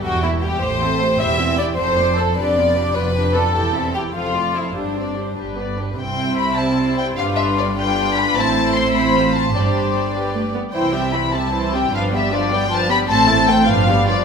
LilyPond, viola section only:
\new Staff \with { instrumentName = "Viola section" } { \time 6/8 \key a \dorian \tempo 4. = 101 <g g'>8 <b e'>8 <g g'>8 <a g'>8 <c' a'>8 <a g'>8 | \key c \major <e' g'>8 <c' e'>8 <e' g'>8 <c' a'>8 <a c''>8 <c' a'>8 | <d' g'>8 <b f'>8 <d' g'>8 <b f'>8 <d' g'>8 <b f'>8 | <e' g'>8 <c' e'>8 <e' g'>8 <f a'>8 <a f'>8 <f a'>8 |
<d' g'>8 <c' d'>8 <d' g'>8 <d' g'>8 <b b'>8 <d' g'>8 | <g c'>2. | <g d'>4. <g d'>4. | c'2. |
<g d'>4. g8 a8 b8 | <e e'>8 <g c'>8 <e e'>8 <g c'>8 <e e'>8 <g c'>8 | <f d'>8 <g b>8 <f d'>8 <g b>8 <f d'>8 <g b>8 | <a c'>8 <a c'>8 <a c'>8 <f d'>8 <g b>8 <f d'>8 | }